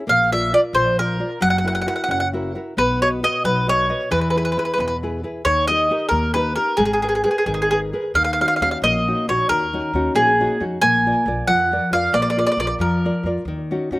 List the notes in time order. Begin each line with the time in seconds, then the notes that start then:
0.07 A#1 A#3 F5
0.32 F4 A#4 D5 E5
0.53 F4 A#4 D5
0.73 A#1 F3 C5
0.99 F4 A#4 D5
1.20 F4 A#4 D5
1.41 F#1 F#3 F#5
1.50 F#5
1.58 F#5
1.64 E4 F#4 A#4 F#5
1.75 F#5
1.82 F#5
1.86 E4 F#4 A#4 F#5
1.96 F#5
2.04 F#5
2.08 F#1 C#3 F#5
2.20 F#5
2.33 E4 F#4 A#4
2.55 E4 F#4 A#4
2.77 B1 B3 B4
3.02 F#4 B4 C#5 D#5
3.23 F#4 B4 D#5
3.44 B1 F#3 B4
3.67 F#4 B4 C#5 D#5
3.89 F#4 B4 D#5
4.11 E2 E3 B4
4.21 B4
4.30 B4
4.36 E4 G#4 B4
4.45 B4
4.52 B4
4.57 E4 G#4 B4
4.65 B4
4.74 B4
4.78 E2 B2 B4
4.88 B4
5.03 E4 G#4 B4
5.23 E4 G#4 B4
5.45 D#2 D#3 C#5
5.68 D#4 G4 A#4 D#5
5.91 D#4 G4 A#4
6.09 D#2 A#3 A#4
6.34 D#4 G4 A#4 B4
6.56 D#4 G4 A#4
6.77 G#1 G#3 G#4
6.85 G#4
6.93 G#4
7.02 G#4 A#4 B4
7.09 G#4
7.15 G#4
7.24 G#4 A#4 B4
7.31 G#4
7.38 G#4
7.46 G#1 D#3 G#4
7.54 G#4
7.62 G#4
7.71 G#4 A#4 B4
7.93 G#4 A#4 B4
8.14 D#2 D#3 F5
8.24 F5
8.33 F5
8.40 C#4 D#4 F#4 F5
8.48 F5
8.56 F5
8.61 D#2 C#4 D#4 F#4 F5
8.71 F5
8.82 A#1 A#3 D#5
9.08 C#4 D#4 F#4
9.28 A#1 C#4 D#4 F#4 C#5
9.49 D#2 D#3 A#4
9.73 C#4 D#4 F#4
9.93 D#2 C#4 D#4 F#4
10.15 A#1 A#3 G#4
10.40 C#4 D#4 F#4
10.60 F2 C#4 D#4 F#4
10.81 A#1 A#3 G#5
11.06 F4 A#4 D5
11.26 A#1 F4 A#4 D5
11.47 F2 F3 F#5
11.71 F4 A#4 D5
11.92 F2 F4 A#4 D5 F5
12.13 A#1 A#3 D5
12.22 D5
12.30 D5
12.37 F4 A#4 D5
12.47 D5
12.52 D5
12.57 A#1 F4 A#4 D5
12.67 D5
12.79 F2 F3 A#4
13.05 F4 A#4 D5
13.23 F2 F4 A#4 D5
13.45 D#2 D#3
13.71 C#4 D#4 F#4
13.91 D#2 C#4 D#4 F#4